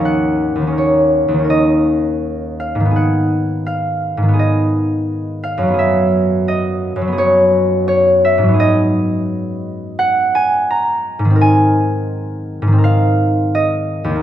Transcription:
X:1
M:4/4
L:1/8
Q:1/4=84
K:G#dor
V:1 name="Harp"
[df]2 c2 d3 e | f2 e2 d3 e | =e2 d2 c2 c e | d4 f g a2 |
g4 e2 d2 |]
V:2 name="Harp"
[D,,D,CDA]2 [D,,D,CA]2 [D,,D,CA]4 | [G,,D,B,G]4 [G,,D,B,G]4 | [F,,F,B,G]4 [F,,F,B,G]4 | [G,,F,B,G]8 |
[G,,D,^B,A]4 [G,,D,B,A]4 |]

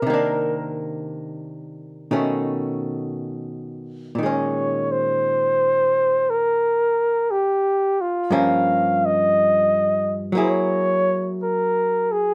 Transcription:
X:1
M:4/4
L:1/16
Q:"Swing" 1/4=58
K:Bbdor
V:1 name="Muted trumpet"
B2 z12 z2 | d2 c6 B4 G2 F2 | f2 e4- e z d4 B2 A2 |]
V:2 name="Hollow-body jazz guitar" clef=bass
[C,E,B,=D]8 [=B,,^D,=A,^C]8 | [B,,E,A,D]16 | [G,,F,B,D]8 [_G,B,_FA]8 |]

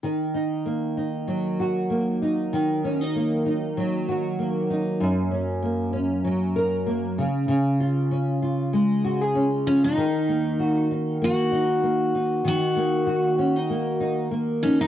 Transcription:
X:1
M:4/4
L:1/16
Q:"Swing 16ths" 1/4=97
K:D#m
V:1 name="Steel-string acoustic guitar"
z16 | z16 | z16 | z12 z2 C D- |
D6 z2 F8 | F12 z2 C D |]
V:2 name="Nylon-string guitar"
D,2 D2 A,2 D2 F,2 F2 A,2 D2 | D,2 C D A,2 D2 F,2 F2 A,2 D2 | F,,2 C2 A,2 C2 F,2 A2 A,2 C,2 | C,2 E2 C2 E2 G,2 F G C2 E2 |
D,2 A,2 F2 D2 A,2 D2 A,2 D2 | D,2 A,2 F2 C D A,2 D2 A,2 D2 |]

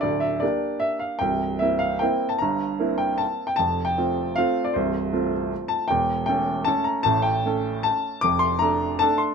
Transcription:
X:1
M:3/4
L:1/16
Q:1/4=154
K:Cmix
V:1 name="Upright piano"
d2 e2 d4 e2 f2 | g4 e2 f2 g3 a | b6 g2 a3 g | a3 g4- g f3 d |
c6 z4 a2 | g4 g4 a2 b2 | a2 g6 a4 | d'2 c'2 b4 a2 c'2 |]
V:2 name="Upright piano"
[D,,,D,,]4 [B,DG]8 | [C,,,C,,]4 [B,CE]4 [B,CE]4 | [G,,,G,,]4 [B,CE]8 | [F,,,F,,]4 [A,CF]4 [A,CF]4 |
[C,,,C,,]4 [A,CF]8 | [E,,,E,,]4 [A,^CA]4 [A,CA]4 | [A,,,A,,]4 [A,^CA]8 | [F,,,F,,]4 [A,DA]4 [A,DA]4 |]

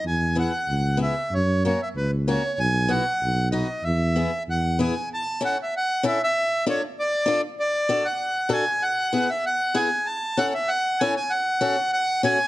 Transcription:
X:1
M:2/4
L:1/16
Q:1/4=96
K:E
V:1 name="Accordion"
g2 f4 e2 | c2 c e B2 c2 | g2 f4 d2 | e4 f2 g2 |
[K:A] a2 f e f2 e e- | e2 c2 d3 z | d3 f3 g2 | f3 e f2 g2 |
a2 f e f2 g g | f4 f2 g2 |]
V:2 name="Steel-string acoustic guitar"
z2 [B,EG]2 z2 [B,EG]2 | z2 [^A,CF]2 z2 [A,CF]2 | z2 [B,EF]2 z2 [B,DF]2 | z2 [B,EG]2 z2 [B,EG]2 |
[K:A] z2 [CEA]2 z2 [CEA]2 | z2 [D=FA]2 z2 [DFA]2 | z2 [DFA]2 z2 [DFA]2 | z2 [B,EG]2 z2 [B,EG]2 |
z2 [CEA]2 z2 [CEA]2 | z2 [CFA]2 z2 [CFA]2 |]
V:3 name="Tuba" clef=bass
E,,4 C,,4 | F,,4 C,,4 | B,,,4 B,,,4 | E,,4 E,,4 |
[K:A] z8 | z8 | z8 | z8 |
z8 | z8 |]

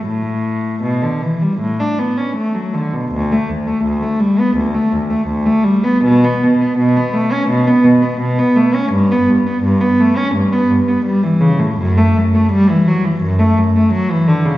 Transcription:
X:1
M:4/4
L:1/16
Q:1/4=83
K:D
V:1 name="Cello" clef=bass
A,,4 B,, D, E, G, A,, D B, C A, F, D, B,, | D,, A, D,, A, D,, A, G, B, D,, A, D,, A, D,, A, G, B, | B,, B, B,, B, B,, B, A, C B,, B, B,, B, B,, B, A, C | G,, B, G,, B, G,, B, A, C G,, B, G,, B, G, E, C, A,, |
F,, A, F,, A, G, E, F, E, F,, A, F,, A, F, E, D, C, |]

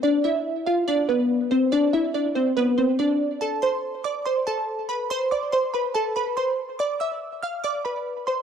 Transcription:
X:1
M:4/4
L:1/8
Q:1/4=142
K:Am
V:1 name="Synth pluck"
[Dd] [Ee]2 [Ff] [Dd] [B,B]2 [Cc] | [Dd] [Ee] [Dd] [Cc] [B,B] [Cc] [Dd]2 | [Aa] [cc']2 [dd'] [cc'] [Aa]2 [Bb] | [cc'] [dd'] [cc'] [Bb] [Aa] [Bb] [cc'] z |
[dd'] [ee']2 [ff'] [dd'] [Bb]2 [cc'] |]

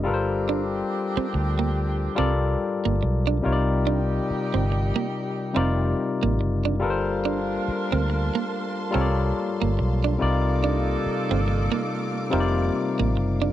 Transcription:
X:1
M:4/4
L:1/16
Q:"Swing 16ths" 1/4=71
K:Gm
V:1 name="String section"
z16 | z16 | [B,fac']16 | [B,Ed']16 |]
V:2 name="Tine electric piano"
[G,FAB=Bc]8 z2 [G,FA_Bd]6 | [C,G,EFB^cd]8 z2 [=C,G,EFBd]6 | [G,FAB=Bc]8 z2 [G,FA_B^cd]6 | [C,G,EFBd]8 z2 [C,G,EFBcd]6 |]
V:3 name="Saxophone section"
[CDG]12- [CDG]2 z2 | [G,EG]12- [G,EG]2 z2 | [DFB]12- [DFB]2 z2 | [EFA]12- [EFA]2 z2 |]
V:4 name="Clean electric guitar"
z2 D z2 C z B, z2 C z2 B, z D | z2 D z2 C z B, z2 C z2 B, z D | z2 D z2 C z B, z2 C z2 B, z D | z2 D z2 C z B, z2 C z2 B, z D |]
V:5 name="Fingered electric bass" clef=bass
G,,,4 z2 D,,4 C,,2 z G,,, =B,,,2 | C,,4 z G,,,2 z3 F,,,2 z A,,, ^F,,,2 | G,,,4 z D,,2 z3 C,,2 z G,,, =B,,,2 | C,,4 z G,,,2 z3 F,,,2 z A,,, ^F,,,2 |]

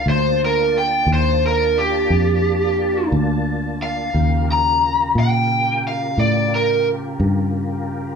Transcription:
X:1
M:12/8
L:1/8
Q:3/8=59
K:Gm
V:1 name="Lead electric guitar"
c B g c B G4 z2 f- | f b2 g2 f d B z4 |]
V:2 name="Tonewheel organ"
[B,DFa]12 | [_D,FGB]12 |]
V:3 name="Fingered electric bass" clef=bass
D,,3 E,,3 F,,3 D,,3 | E,,3 B,,3 A,,3 G,,3 |]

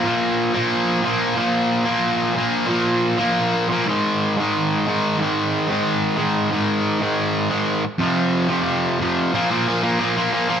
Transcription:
X:1
M:4/4
L:1/8
Q:1/4=181
K:Ablyd
V:1 name="Distorted electric guitar" clef=bass
[B,,F,B,]3 [B,,F,B,]3 [B,,F,B,]2 | [B,,F,B,]3 [B,,F,B,]3 [B,,F,B,]2 | [B,,F,B,]3 [B,,F,B,]3 [B,,F,B,] [A,,E,A,]- | [A,,E,A,]2 [A,,E,A,]3 [A,,E,A,]2 [A,,E,A,]- |
[A,,E,A,]2 [A,,E,A,]3 [A,,E,A,]2 [A,,E,A,]- | [A,,E,A,]2 [A,,E,A,]3 [A,,E,A,]2 z | [F,,C,F,]3 [F,,C,F,]3 [F,,C,F,]2 | [K:Cdor] [B,,F,B,] [B,,F,B,] [B,,F,B,] [B,,F,B,] [B,,F,B,] [B,,F,B,] [B,,F,B,] [B,,F,B,] |]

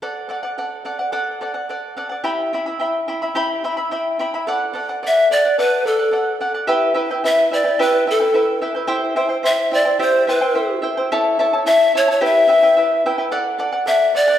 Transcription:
X:1
M:2/4
L:1/16
Q:1/4=108
K:Dmix
V:1 name="Charango"
[Adf]2 [Adf] [df] [Adf]2 [Adf] [df] | [Adf]2 [Adf] [df] [Adf]2 [Adf] [df] | [EGegb]2 [Eegb] [Eeb] [Eegb]2 [Eegb] [Eeb] | [EGegb]2 [Eegb] [Eeb] [Eegb]2 [Eegb] [Eeb] |
[Adf]2 [Adf] [df] [Adf]2 [Adf] [df] | [Adf]2 [Adf] [df] [Adf]2 [Adf] [df] | [EGBeg]2 [EBeg] [EBg] [EBeg]2 [EBeg] [EBg] | [EGBeg]2 [EBeg] [EBg] [EBeg]2 [EBeg] [EBg] |
[EGceg]2 [Eceg] [Ecg] [Eceg]2 [Eceg] [Ecg] | [EGceg]2 [Eceg] [Ecg] [Eceg]2 [Eceg] [Ecg] | [EA^cea]2 [Ecea] [Eca] [Ecea]2 [Ecea] [Eca] | [EGBeg]2 [EBeg] [EBg] [EBeg]2 [EBeg] [EBg] |
[Adf]2 [Adf] [df] [Adf]2 [Adf] [df] |]
V:2 name="Pan flute"
z8 | z8 | z8 | z8 |
z4 e2 d2 | B2 A4 z2 | z4 e2 d2 | B2 A4 z2 |
z4 e2 d2 | c2 B4 z2 | z4 e2 ^c c | e6 z2 |
z4 e2 d2 |]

